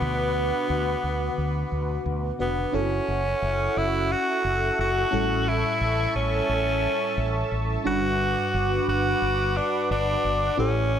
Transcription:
0.00 0.50 D2 loud
0.00 0.65 B2 medium
0.00 2.06 B3 loud
0.00 2.35 B3 medium
0.00 2.35 D4 medium
0.00 2.36 F#4 medium
0.00 2.36 B4 medium
0.00 2.70 B4 medium
0.00 2.70 F#5 medium
0.00 2.70 D6 medium
0.69 0.94 D2 medium
1.03 1.28 D2 medium
1.38 1.62 D2 medium
1.72 1.96 D2 medium
2.06 2.30 D2 medium
2.39 2.64 F1 medium
2.39 2.73 B3 medium
2.39 2.77 B3 medium
2.39 2.74 D4 soft
2.39 2.73 F#4 medium
2.39 2.74 B4 medium
2.72 2.98 F#1 loud
2.72 5.08 C#4 medium
2.72 3.79 C#4 medium
2.72 5.08 E4 soft
2.72 5.09 F#4 medium
2.72 7.81 A4 medium
2.72 5.09 A4 medium
2.72 5.10 E5 medium
2.72 5.10 F#5 medium
2.72 7.81 C#6 medium
3.08 3.33 F#1 medium
3.42 3.67 F#1 loud
3.76 4.13 F#1 loud
3.76 4.13 E4 loud
4.12 4.79 F#4 loud
4.44 4.69 F#1 medium
4.79 5.03 F#1 medium
4.79 5.50 F#4 loud
5.11 5.62 A1 medium
5.11 6.11 A2 medium
5.11 7.81 G3 medium
5.11 7.80 C#4 medium
5.11 7.81 E4 medium
5.11 7.82 A4 medium
5.11 7.83 E5 medium
5.11 7.83 A5 medium
5.48 6.15 E4 medium
5.81 6.05 A1 loud
6.15 6.40 A1 medium
6.15 7.55 C#4 loud
6.49 6.86 A1 medium
7.17 7.42 A1 loud
7.51 7.76 A1 medium
7.84 8.34 G1 medium
7.84 8.84 G2 medium
7.84 10.54 G3 medium
7.84 10.53 D4 medium
7.84 10.54 F#4 medium
7.84 8.84 F#4 loud
7.84 10.55 B4 medium
7.84 10.55 F#5 medium
7.84 10.56 D6 medium
8.54 8.78 G1 loud
8.88 9.12 G1 loud
8.88 9.59 F#4 loud
9.22 9.58 G1 medium
9.57 9.90 D4 medium
9.90 10.15 G1 medium
9.90 10.55 D4 loud
10.24 10.49 G1 medium
10.57 10.99 A1 medium
10.57 10.99 A2 medium
10.57 10.99 C#4 medium
10.57 10.99 C#4 loud
10.57 10.99 E4 medium
10.57 10.99 G4 medium
10.57 10.99 A4 medium
10.57 10.99 E5 medium
10.57 10.99 C#6 medium

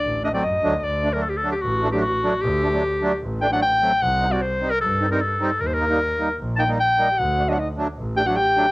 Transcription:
0.00 0.40 D4 loud
0.00 0.24 D5 loud
0.05 0.28 A1 medium
0.23 0.29 A3 medium
0.23 0.29 D4 loud
0.23 0.33 D#5 medium
0.33 0.44 F#3 medium
0.33 0.44 A3 medium
0.33 0.44 C4 medium
0.33 0.45 D5 medium
0.43 0.62 F#2 medium
0.43 0.78 D#5 loud
0.63 0.82 D2 medium
0.63 0.73 F#3 medium
0.63 0.74 A3 medium
0.63 0.74 D4 loud
0.78 0.85 D#5 medium
0.83 1.32 D2 loud
0.83 1.15 D5 loud
1.04 1.09 A3 medium
1.04 1.09 D4 medium
1.13 1.24 F#3 medium
1.13 1.24 A3 medium
1.13 1.24 D4 medium
1.13 1.24 A#4 medium
1.22 1.31 A4 medium
1.29 1.39 G4 medium
1.37 1.51 A4 medium
1.43 1.53 F#3 medium
1.43 1.54 A3 medium
1.43 1.54 D4 medium
1.52 1.63 G4 medium
1.62 2.11 A1 loud
1.62 1.91 F#4 medium
1.83 1.88 A3 medium
1.83 1.88 D4 medium
1.92 2.03 F#3 medium
1.92 2.04 A3 medium
1.92 2.03 D4 medium
1.92 2.04 G4 medium
2.02 2.43 F#4 loud
2.23 2.33 F#3 medium
2.23 2.33 A3 medium
2.23 2.34 D4 medium
2.42 2.91 D2 loud
2.42 3.22 G4 loud
2.63 2.68 A3 medium
2.63 2.68 D4 medium
2.73 2.83 F#3 medium
2.73 2.83 A3 medium
2.73 2.83 D4 medium
3.01 3.12 F#3 medium
3.01 3.12 A3 medium
3.01 3.12 D4 medium
3.22 3.70 A1 loud
3.41 3.47 A3 medium
3.41 3.47 D4 loud
3.41 3.51 G5 loud
3.51 3.62 F#3 medium
3.51 3.62 A3 medium
3.51 3.62 D4 medium
3.51 3.62 F#5 loud
3.62 4.04 G5 loud
3.81 3.92 F#3 medium
3.81 3.92 A3 medium
3.81 3.92 C4 medium
4.02 4.49 C2 loud
4.02 4.33 F#5 loud
4.21 4.26 C4 medium
4.21 4.27 D#4 medium
4.30 4.41 G3 medium
4.30 4.41 C4 medium
4.30 4.41 F#4 medium
4.30 4.43 D5 medium
4.42 4.72 C5 loud
4.61 4.71 G3 medium
4.61 4.71 C4 medium
4.61 4.71 D#4 medium
4.70 4.80 A#4 loud
4.81 5.28 G2 loud
4.81 5.09 A4 medium
5.01 5.06 C4 medium
5.01 5.06 D#4 medium
5.10 5.21 G3 medium
5.10 5.21 C4 medium
5.10 5.21 D#4 medium
5.10 5.23 A#4 medium
5.21 5.62 A4 medium
5.40 5.50 G3 medium
5.40 5.51 C4 medium
5.40 5.51 D#4 medium
5.60 6.08 D#2 loud
5.60 5.68 A#4 medium
5.67 5.75 C5 medium
5.74 6.39 A#4 loud
5.80 5.85 A#3 medium
5.80 5.85 D#4 medium
5.90 6.00 G3 medium
5.90 6.00 A#3 medium
5.90 6.00 D#4 medium
6.19 6.29 G3 medium
6.19 6.29 A#3 medium
6.19 6.30 D#4 medium
6.39 6.87 A#1 loud
6.56 6.64 A#3 medium
6.56 6.64 D#4 medium
6.56 6.69 G5 medium
6.56 6.61 A5 medium
6.68 6.78 G3 medium
6.68 6.79 A#3 medium
6.68 6.79 D#4 medium
6.80 7.20 G5 loud
6.98 7.08 G3 medium
6.98 7.08 A#3 medium
6.98 7.08 D#4 medium
7.11 7.19 G4 medium
7.17 7.65 D2 loud
7.17 7.59 F#4 loud
7.17 7.50 F#5 loud
7.38 7.43 A3 medium
7.38 7.43 D4 medium
7.48 7.58 F#3 medium
7.48 7.58 A3 medium
7.48 7.58 D4 medium
7.48 7.55 D#5 medium
7.53 7.61 F#5 medium
7.58 7.67 D#4 medium
7.58 7.68 D#5 medium
7.77 7.87 F#3 medium
7.77 7.87 A3 medium
7.77 7.87 D4 medium
7.97 8.44 A1 medium
8.17 8.22 A3 medium
8.17 8.22 D4 medium
8.17 8.25 G4 loud
8.17 8.28 G5 loud
8.25 8.36 F#3 medium
8.25 8.37 A3 medium
8.25 8.37 D4 medium
8.25 8.34 F#4 medium
8.25 8.38 F#5 medium
8.35 8.72 G4 medium
8.35 8.72 G5 loud
8.56 8.66 F#3 medium
8.56 8.66 A3 medium
8.56 8.66 D4 medium

